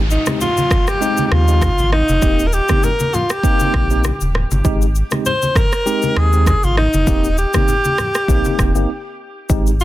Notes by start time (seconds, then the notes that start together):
Already playing: G#1, downlifter
0.10 D#4, shaker
0.26 G#3 C4 D#4 G4, cross-stick, high conga, shaker
0.41 F4, low conga, shaker
0.57 high conga, shaker
0.71 kick, cross-stick, low conga, shaker
0.88 G4, cross-stick, shaker
1.01 G#3 C4 D#4 G4, shaker
1.17 high conga, shaker
1.26 G4
1.31 D#2 F4, cross-stick, high conga
1.48 G#3 C4 D#4 G4, shaker
1.62 kick, cross-stick, high conga, low conga, shaker
1.78 G#1, high conga, shaker
1.92 D#4, cross-stick, low conga
2.09 F1, high conga, shaker
2.22 D#1 A#3 C4 D#4 G4, kick, shaker
2.39 shaker
2.47 A#4
2.53 G4, shaker
2.69 A#3 C4 D#4 G4, kick, cross-stick, high conga, shaker
2.83 A#4, low conga, shaker
3.00 high conga, shaker
3.14 F4, low conga, shaker
3.30 G4, cross-stick, shaker
3.43 A#3 C4 D#4 G4, kick, shaker
3.60 high conga, shaker
3.74 A#1, kick, cross-stick, high conga
3.90 A#3 C4 D#4 G4, shaker
4.04 cross-stick, high conga, low conga, shaker
4.21 D#1, high conga, shaker
4.35 cross-stick, low conga
4.51 G1, high conga, shaker
4.64 G#1 G#3 C4 D#4 G4, kick, shaker
4.82 shaker
4.95 shaker
5.11 G#3 C4 D#4 G4, cross-stick, high conga, shaker
5.26 C5, low conga, shaker
5.42 high conga, shaker
5.55 A#4, kick, cross-stick, low conga, shaker
5.72 cross-stick, shaker
5.86 G#3 C4 D#4 G4, shaker
6.02 high conga, shaker
6.16 D#2 G#4, cross-stick, high conga
6.33 G#3 C4 D#4 G4, shaker
6.46 G#4, kick, cross-stick, high conga, low conga, shaker
6.63 G#1 F4, high conga, shaker
6.77 D#4, cross-stick, low conga
6.93 F1, high conga, shaker
7.07 D#1 A#3 C4 D#4 G4, kick, shaker
7.24 shaker
7.38 G4, shaker
7.53 A#3 C4 D#4 G4, kick, cross-stick, high conga, shaker
7.68 low conga, shaker
7.85 high conga, shaker
7.98 cross-stick, low conga, shaker
8.15 cross-stick, shaker
8.28 A#1 A#3 C4 D#4 G4, kick, shaker
8.45 high conga, shaker
8.59 D#1, kick, cross-stick, high conga, shaker
8.75 G1 A#3 C4 D#4 G4, shaker
9.49 G#1 G#3 C4 D#4 G4, kick, shaker
9.67 shaker
9.80 F4, shaker